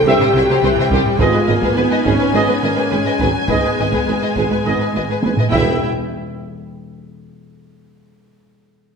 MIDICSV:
0, 0, Header, 1, 12, 480
1, 0, Start_track
1, 0, Tempo, 573614
1, 1001, Time_signature, 4, 2, 24, 8
1, 7496, End_track
2, 0, Start_track
2, 0, Title_t, "Violin section"
2, 0, Program_c, 0, 48
2, 0, Note_on_c, 0, 79, 80
2, 990, Note_on_c, 0, 80, 64
2, 1003, Note_off_c, 0, 79, 0
2, 4605, Note_on_c, 0, 79, 50
2, 4619, Note_off_c, 0, 80, 0
2, 4884, Note_off_c, 0, 79, 0
2, 7496, End_track
3, 0, Start_track
3, 0, Title_t, "Trumpet section"
3, 0, Program_c, 1, 61
3, 56, Note_on_c, 1, 76, 64
3, 219, Note_off_c, 1, 76, 0
3, 1003, Note_on_c, 1, 75, 55
3, 1168, Note_off_c, 1, 75, 0
3, 1954, Note_on_c, 1, 75, 50
3, 2121, Note_off_c, 1, 75, 0
3, 2923, Note_on_c, 1, 75, 43
3, 3093, Note_off_c, 1, 75, 0
3, 3890, Note_on_c, 1, 75, 46
3, 4061, Note_off_c, 1, 75, 0
3, 4618, Note_on_c, 1, 76, 45
3, 4824, Note_off_c, 1, 76, 0
3, 7496, End_track
4, 0, Start_track
4, 0, Title_t, "Violin section"
4, 0, Program_c, 2, 48
4, 64, Note_on_c, 2, 72, 73
4, 66, Note_on_c, 2, 67, 73
4, 109, Note_off_c, 2, 72, 0
4, 110, Note_off_c, 2, 67, 0
4, 186, Note_on_c, 2, 72, 50
4, 187, Note_off_c, 2, 72, 0
4, 187, Note_on_c, 2, 72, 55
4, 231, Note_off_c, 2, 72, 0
4, 310, Note_on_c, 2, 72, 52
4, 310, Note_on_c, 2, 76, 50
4, 353, Note_off_c, 2, 72, 0
4, 353, Note_off_c, 2, 76, 0
4, 426, Note_on_c, 2, 67, 62
4, 428, Note_on_c, 2, 72, 66
4, 470, Note_off_c, 2, 67, 0
4, 471, Note_off_c, 2, 72, 0
4, 538, Note_on_c, 2, 72, 51
4, 539, Note_off_c, 2, 72, 0
4, 539, Note_on_c, 2, 72, 51
4, 584, Note_off_c, 2, 72, 0
4, 670, Note_on_c, 2, 72, 45
4, 672, Note_on_c, 2, 76, 57
4, 713, Note_off_c, 2, 72, 0
4, 714, Note_off_c, 2, 76, 0
4, 779, Note_on_c, 2, 72, 73
4, 782, Note_on_c, 2, 67, 75
4, 824, Note_off_c, 2, 72, 0
4, 826, Note_off_c, 2, 67, 0
4, 1012, Note_on_c, 2, 68, 69
4, 1012, Note_on_c, 2, 71, 64
4, 1057, Note_off_c, 2, 68, 0
4, 1057, Note_off_c, 2, 71, 0
4, 1119, Note_on_c, 2, 71, 44
4, 1120, Note_off_c, 2, 71, 0
4, 1120, Note_on_c, 2, 71, 41
4, 1167, Note_off_c, 2, 71, 0
4, 1240, Note_on_c, 2, 75, 37
4, 1244, Note_on_c, 2, 71, 44
4, 1287, Note_off_c, 2, 75, 0
4, 1290, Note_off_c, 2, 71, 0
4, 1366, Note_on_c, 2, 68, 61
4, 1373, Note_on_c, 2, 71, 62
4, 1412, Note_off_c, 2, 68, 0
4, 1417, Note_off_c, 2, 71, 0
4, 1478, Note_on_c, 2, 71, 41
4, 1481, Note_off_c, 2, 71, 0
4, 1481, Note_on_c, 2, 71, 45
4, 1528, Note_off_c, 2, 71, 0
4, 1599, Note_on_c, 2, 71, 44
4, 1605, Note_on_c, 2, 75, 43
4, 1646, Note_off_c, 2, 71, 0
4, 1650, Note_off_c, 2, 75, 0
4, 1725, Note_on_c, 2, 71, 54
4, 1732, Note_on_c, 2, 68, 64
4, 1771, Note_off_c, 2, 71, 0
4, 1776, Note_off_c, 2, 68, 0
4, 1838, Note_on_c, 2, 71, 38
4, 1885, Note_off_c, 2, 71, 0
4, 1959, Note_on_c, 2, 71, 61
4, 1960, Note_on_c, 2, 68, 62
4, 2006, Note_off_c, 2, 68, 0
4, 2006, Note_off_c, 2, 71, 0
4, 2076, Note_on_c, 2, 71, 42
4, 2124, Note_off_c, 2, 71, 0
4, 2203, Note_on_c, 2, 75, 45
4, 2207, Note_on_c, 2, 71, 38
4, 2249, Note_off_c, 2, 75, 0
4, 2253, Note_off_c, 2, 71, 0
4, 2312, Note_on_c, 2, 68, 55
4, 2315, Note_on_c, 2, 71, 57
4, 2360, Note_off_c, 2, 68, 0
4, 2363, Note_off_c, 2, 71, 0
4, 2437, Note_on_c, 2, 71, 40
4, 2441, Note_off_c, 2, 71, 0
4, 2441, Note_on_c, 2, 71, 44
4, 2488, Note_off_c, 2, 71, 0
4, 2567, Note_on_c, 2, 75, 42
4, 2568, Note_on_c, 2, 71, 45
4, 2614, Note_off_c, 2, 71, 0
4, 2614, Note_off_c, 2, 75, 0
4, 2688, Note_on_c, 2, 68, 56
4, 2691, Note_on_c, 2, 71, 49
4, 2734, Note_off_c, 2, 68, 0
4, 2737, Note_off_c, 2, 71, 0
4, 2920, Note_on_c, 2, 71, 55
4, 2923, Note_on_c, 2, 68, 53
4, 2969, Note_off_c, 2, 71, 0
4, 2971, Note_off_c, 2, 68, 0
4, 3046, Note_on_c, 2, 71, 34
4, 3047, Note_off_c, 2, 71, 0
4, 3047, Note_on_c, 2, 71, 31
4, 3095, Note_off_c, 2, 71, 0
4, 3176, Note_on_c, 2, 75, 35
4, 3182, Note_on_c, 2, 71, 36
4, 3223, Note_off_c, 2, 75, 0
4, 3227, Note_off_c, 2, 71, 0
4, 3285, Note_on_c, 2, 71, 46
4, 3286, Note_on_c, 2, 68, 48
4, 3334, Note_off_c, 2, 71, 0
4, 3335, Note_off_c, 2, 68, 0
4, 3409, Note_on_c, 2, 71, 34
4, 3410, Note_off_c, 2, 71, 0
4, 3410, Note_on_c, 2, 71, 36
4, 3458, Note_off_c, 2, 71, 0
4, 3530, Note_on_c, 2, 75, 35
4, 3532, Note_on_c, 2, 71, 36
4, 3579, Note_off_c, 2, 75, 0
4, 3581, Note_off_c, 2, 71, 0
4, 3658, Note_on_c, 2, 71, 42
4, 3659, Note_on_c, 2, 68, 47
4, 3706, Note_off_c, 2, 68, 0
4, 3706, Note_off_c, 2, 71, 0
4, 3781, Note_on_c, 2, 71, 36
4, 3785, Note_off_c, 2, 71, 0
4, 3785, Note_on_c, 2, 71, 33
4, 3832, Note_off_c, 2, 71, 0
4, 3900, Note_on_c, 2, 71, 45
4, 3904, Note_on_c, 2, 68, 43
4, 3948, Note_off_c, 2, 71, 0
4, 3951, Note_off_c, 2, 68, 0
4, 4023, Note_on_c, 2, 71, 35
4, 4026, Note_off_c, 2, 71, 0
4, 4026, Note_on_c, 2, 71, 35
4, 4072, Note_off_c, 2, 71, 0
4, 4150, Note_on_c, 2, 71, 38
4, 4151, Note_on_c, 2, 75, 36
4, 4197, Note_off_c, 2, 71, 0
4, 4197, Note_off_c, 2, 75, 0
4, 4269, Note_on_c, 2, 68, 44
4, 4273, Note_on_c, 2, 71, 44
4, 4315, Note_off_c, 2, 68, 0
4, 4318, Note_off_c, 2, 71, 0
4, 4402, Note_on_c, 2, 71, 36
4, 4446, Note_off_c, 2, 71, 0
4, 4508, Note_on_c, 2, 75, 38
4, 4516, Note_on_c, 2, 71, 38
4, 4556, Note_off_c, 2, 75, 0
4, 4562, Note_off_c, 2, 71, 0
4, 4635, Note_on_c, 2, 76, 48
4, 4900, Note_off_c, 2, 76, 0
4, 7496, End_track
5, 0, Start_track
5, 0, Title_t, "French horn section"
5, 0, Program_c, 3, 60
5, 57, Note_on_c, 3, 67, 80
5, 1004, Note_off_c, 3, 67, 0
5, 1005, Note_on_c, 3, 65, 77
5, 1469, Note_off_c, 3, 65, 0
5, 1478, Note_on_c, 3, 63, 64
5, 1954, Note_off_c, 3, 63, 0
5, 1957, Note_on_c, 3, 61, 74
5, 2923, Note_off_c, 3, 61, 0
5, 2932, Note_on_c, 3, 59, 55
5, 4357, Note_off_c, 3, 59, 0
5, 4628, Note_on_c, 3, 64, 53
5, 4829, Note_off_c, 3, 64, 0
5, 7496, End_track
6, 0, Start_track
6, 0, Title_t, "Viola section"
6, 0, Program_c, 4, 48
6, 45, Note_on_c, 4, 55, 62
6, 280, Note_off_c, 4, 55, 0
6, 280, Note_on_c, 4, 54, 62
6, 508, Note_on_c, 4, 52, 63
6, 521, Note_off_c, 4, 54, 0
6, 749, Note_off_c, 4, 52, 0
6, 749, Note_on_c, 4, 55, 58
6, 985, Note_on_c, 4, 56, 58
6, 994, Note_off_c, 4, 55, 0
6, 1225, Note_on_c, 4, 58, 61
6, 1231, Note_off_c, 4, 56, 0
6, 1461, Note_on_c, 4, 59, 63
6, 1469, Note_off_c, 4, 58, 0
6, 1703, Note_on_c, 4, 61, 58
6, 1707, Note_off_c, 4, 59, 0
6, 1946, Note_on_c, 4, 59, 55
6, 1948, Note_off_c, 4, 61, 0
6, 2190, Note_off_c, 4, 59, 0
6, 2193, Note_on_c, 4, 58, 51
6, 2435, Note_off_c, 4, 58, 0
6, 2437, Note_on_c, 4, 56, 53
6, 2671, Note_on_c, 4, 54, 45
6, 2678, Note_off_c, 4, 56, 0
6, 2918, Note_off_c, 4, 54, 0
6, 2919, Note_on_c, 4, 56, 54
6, 4590, Note_off_c, 4, 56, 0
6, 4608, Note_on_c, 4, 64, 49
6, 4886, Note_off_c, 4, 64, 0
6, 7496, End_track
7, 0, Start_track
7, 0, Title_t, "Trombone section"
7, 0, Program_c, 5, 61
7, 45, Note_on_c, 5, 60, 60
7, 52, Note_on_c, 5, 43, 61
7, 212, Note_off_c, 5, 60, 0
7, 217, Note_off_c, 5, 43, 0
7, 1013, Note_on_c, 5, 59, 55
7, 1014, Note_on_c, 5, 44, 54
7, 1174, Note_off_c, 5, 59, 0
7, 1175, Note_off_c, 5, 44, 0
7, 1952, Note_on_c, 5, 44, 49
7, 1954, Note_on_c, 5, 59, 49
7, 2120, Note_off_c, 5, 44, 0
7, 2121, Note_off_c, 5, 59, 0
7, 2917, Note_on_c, 5, 44, 45
7, 2921, Note_on_c, 5, 59, 43
7, 3089, Note_off_c, 5, 44, 0
7, 3091, Note_off_c, 5, 59, 0
7, 3912, Note_on_c, 5, 59, 43
7, 3917, Note_on_c, 5, 44, 44
7, 4076, Note_off_c, 5, 59, 0
7, 4079, Note_off_c, 5, 44, 0
7, 4647, Note_on_c, 5, 43, 47
7, 4652, Note_on_c, 5, 59, 49
7, 4842, Note_off_c, 5, 43, 0
7, 4845, Note_off_c, 5, 59, 0
7, 7496, End_track
8, 0, Start_track
8, 0, Title_t, "Cello section"
8, 0, Program_c, 6, 48
8, 48, Note_on_c, 6, 48, 75
8, 96, Note_off_c, 6, 48, 0
8, 173, Note_on_c, 6, 48, 50
8, 220, Note_off_c, 6, 48, 0
8, 287, Note_on_c, 6, 48, 51
8, 335, Note_off_c, 6, 48, 0
8, 408, Note_on_c, 6, 48, 71
8, 455, Note_off_c, 6, 48, 0
8, 526, Note_on_c, 6, 48, 50
8, 574, Note_off_c, 6, 48, 0
8, 651, Note_on_c, 6, 48, 49
8, 697, Note_off_c, 6, 48, 0
8, 765, Note_on_c, 6, 48, 68
8, 812, Note_off_c, 6, 48, 0
8, 1001, Note_on_c, 6, 44, 68
8, 1049, Note_off_c, 6, 44, 0
8, 1121, Note_on_c, 6, 44, 46
8, 1168, Note_off_c, 6, 44, 0
8, 1237, Note_on_c, 6, 44, 45
8, 1285, Note_off_c, 6, 44, 0
8, 1353, Note_on_c, 6, 44, 64
8, 1401, Note_off_c, 6, 44, 0
8, 1476, Note_on_c, 6, 44, 42
8, 1524, Note_off_c, 6, 44, 0
8, 1589, Note_on_c, 6, 44, 45
8, 1638, Note_off_c, 6, 44, 0
8, 1710, Note_on_c, 6, 44, 61
8, 1759, Note_off_c, 6, 44, 0
8, 1826, Note_on_c, 6, 44, 47
8, 1875, Note_off_c, 6, 44, 0
8, 1947, Note_on_c, 6, 44, 57
8, 1996, Note_off_c, 6, 44, 0
8, 2065, Note_on_c, 6, 44, 42
8, 2114, Note_off_c, 6, 44, 0
8, 2188, Note_on_c, 6, 44, 42
8, 2238, Note_off_c, 6, 44, 0
8, 2315, Note_on_c, 6, 44, 55
8, 2363, Note_off_c, 6, 44, 0
8, 2432, Note_on_c, 6, 44, 37
8, 2481, Note_off_c, 6, 44, 0
8, 2543, Note_on_c, 6, 44, 37
8, 2594, Note_off_c, 6, 44, 0
8, 2666, Note_on_c, 6, 44, 55
8, 2717, Note_off_c, 6, 44, 0
8, 2909, Note_on_c, 6, 44, 50
8, 2960, Note_off_c, 6, 44, 0
8, 3032, Note_on_c, 6, 44, 38
8, 3083, Note_off_c, 6, 44, 0
8, 3158, Note_on_c, 6, 44, 33
8, 3208, Note_off_c, 6, 44, 0
8, 3285, Note_on_c, 6, 44, 53
8, 3334, Note_off_c, 6, 44, 0
8, 3409, Note_on_c, 6, 44, 34
8, 3458, Note_off_c, 6, 44, 0
8, 3528, Note_on_c, 6, 44, 37
8, 3577, Note_off_c, 6, 44, 0
8, 3648, Note_on_c, 6, 44, 50
8, 3698, Note_off_c, 6, 44, 0
8, 3771, Note_on_c, 6, 44, 36
8, 3820, Note_off_c, 6, 44, 0
8, 3888, Note_on_c, 6, 44, 48
8, 3938, Note_off_c, 6, 44, 0
8, 4005, Note_on_c, 6, 44, 35
8, 4056, Note_off_c, 6, 44, 0
8, 4135, Note_on_c, 6, 44, 36
8, 4184, Note_off_c, 6, 44, 0
8, 4251, Note_on_c, 6, 44, 47
8, 4301, Note_off_c, 6, 44, 0
8, 4372, Note_on_c, 6, 44, 36
8, 4423, Note_off_c, 6, 44, 0
8, 4494, Note_on_c, 6, 44, 33
8, 4544, Note_off_c, 6, 44, 0
8, 4609, Note_on_c, 6, 40, 50
8, 4886, Note_off_c, 6, 40, 0
8, 7496, End_track
9, 0, Start_track
9, 0, Title_t, "Timpani"
9, 0, Program_c, 7, 47
9, 4615, Note_on_c, 7, 40, 61
9, 4845, Note_off_c, 7, 40, 0
9, 7496, End_track
10, 0, Start_track
10, 0, Title_t, "Double bass section"
10, 0, Program_c, 8, 48
10, 39, Note_on_c, 8, 36, 71
10, 89, Note_off_c, 8, 36, 0
10, 286, Note_on_c, 8, 36, 51
10, 334, Note_off_c, 8, 36, 0
10, 524, Note_on_c, 8, 36, 47
10, 572, Note_off_c, 8, 36, 0
10, 756, Note_on_c, 8, 36, 68
10, 805, Note_off_c, 8, 36, 0
10, 995, Note_on_c, 8, 32, 65
10, 1044, Note_off_c, 8, 32, 0
10, 1236, Note_on_c, 8, 32, 49
10, 1284, Note_off_c, 8, 32, 0
10, 1483, Note_on_c, 8, 32, 44
10, 1529, Note_off_c, 8, 32, 0
10, 1728, Note_on_c, 8, 32, 59
10, 1773, Note_off_c, 8, 32, 0
10, 1955, Note_on_c, 8, 32, 59
10, 2003, Note_off_c, 8, 32, 0
10, 2204, Note_on_c, 8, 32, 38
10, 2250, Note_off_c, 8, 32, 0
10, 2445, Note_on_c, 8, 32, 41
10, 2491, Note_off_c, 8, 32, 0
10, 2688, Note_on_c, 8, 32, 53
10, 2734, Note_off_c, 8, 32, 0
10, 2924, Note_on_c, 8, 32, 52
10, 2973, Note_off_c, 8, 32, 0
10, 3176, Note_on_c, 8, 32, 39
10, 3223, Note_off_c, 8, 32, 0
10, 3418, Note_on_c, 8, 32, 35
10, 3465, Note_off_c, 8, 32, 0
10, 3665, Note_on_c, 8, 32, 51
10, 3711, Note_off_c, 8, 32, 0
10, 3913, Note_on_c, 8, 32, 46
10, 3958, Note_off_c, 8, 32, 0
10, 4156, Note_on_c, 8, 32, 34
10, 4201, Note_off_c, 8, 32, 0
10, 4396, Note_on_c, 8, 32, 33
10, 4441, Note_off_c, 8, 32, 0
10, 4635, Note_on_c, 8, 28, 50
10, 4900, Note_off_c, 8, 28, 0
10, 7496, End_track
11, 0, Start_track
11, 0, Title_t, "Tuba"
11, 0, Program_c, 10, 58
11, 58, Note_on_c, 10, 36, 67
11, 104, Note_off_c, 10, 36, 0
11, 297, Note_on_c, 10, 36, 48
11, 343, Note_off_c, 10, 36, 0
11, 529, Note_on_c, 10, 36, 47
11, 575, Note_off_c, 10, 36, 0
11, 767, Note_on_c, 10, 36, 69
11, 814, Note_off_c, 10, 36, 0
11, 1003, Note_on_c, 10, 32, 62
11, 1050, Note_off_c, 10, 32, 0
11, 1240, Note_on_c, 10, 32, 47
11, 1288, Note_off_c, 10, 32, 0
11, 1479, Note_on_c, 10, 32, 44
11, 1526, Note_off_c, 10, 32, 0
11, 1718, Note_on_c, 10, 32, 61
11, 1765, Note_off_c, 10, 32, 0
11, 1960, Note_on_c, 10, 32, 58
11, 2007, Note_off_c, 10, 32, 0
11, 2199, Note_on_c, 10, 32, 41
11, 2246, Note_off_c, 10, 32, 0
11, 2440, Note_on_c, 10, 32, 36
11, 2487, Note_off_c, 10, 32, 0
11, 2685, Note_on_c, 10, 32, 57
11, 2732, Note_off_c, 10, 32, 0
11, 2926, Note_on_c, 10, 32, 45
11, 2974, Note_off_c, 10, 32, 0
11, 3177, Note_on_c, 10, 32, 36
11, 3224, Note_off_c, 10, 32, 0
11, 3423, Note_on_c, 10, 32, 39
11, 3469, Note_off_c, 10, 32, 0
11, 3661, Note_on_c, 10, 32, 52
11, 3708, Note_off_c, 10, 32, 0
11, 3905, Note_on_c, 10, 32, 51
11, 3951, Note_off_c, 10, 32, 0
11, 4148, Note_on_c, 10, 32, 35
11, 4194, Note_off_c, 10, 32, 0
11, 4395, Note_on_c, 10, 32, 31
11, 4441, Note_off_c, 10, 32, 0
11, 4632, Note_on_c, 10, 28, 52
11, 4832, Note_off_c, 10, 28, 0
11, 7496, End_track
12, 0, Start_track
12, 0, Title_t, "Taiko and cinematic ensemble drums"
12, 166, Note_on_c, 9, 45, 42
12, 250, Note_off_c, 9, 45, 0
12, 640, Note_on_c, 9, 45, 44
12, 724, Note_off_c, 9, 45, 0
12, 760, Note_on_c, 9, 41, 69
12, 844, Note_off_c, 9, 41, 0
12, 878, Note_on_c, 9, 45, 44
12, 961, Note_off_c, 9, 45, 0
12, 998, Note_on_c, 9, 41, 80
12, 1082, Note_off_c, 9, 41, 0
12, 1352, Note_on_c, 9, 41, 71
12, 1436, Note_off_c, 9, 41, 0
12, 1715, Note_on_c, 9, 41, 65
12, 1798, Note_off_c, 9, 41, 0
12, 2673, Note_on_c, 9, 41, 64
12, 2757, Note_off_c, 9, 41, 0
12, 2914, Note_on_c, 9, 41, 75
12, 2997, Note_off_c, 9, 41, 0
12, 3283, Note_on_c, 9, 41, 67
12, 3366, Note_off_c, 9, 41, 0
12, 3647, Note_on_c, 9, 41, 65
12, 3731, Note_off_c, 9, 41, 0
12, 4373, Note_on_c, 9, 48, 72
12, 4456, Note_off_c, 9, 48, 0
12, 4493, Note_on_c, 9, 45, 73
12, 4577, Note_off_c, 9, 45, 0
12, 4618, Note_on_c, 9, 41, 74
12, 4702, Note_off_c, 9, 41, 0
12, 7496, End_track
0, 0, End_of_file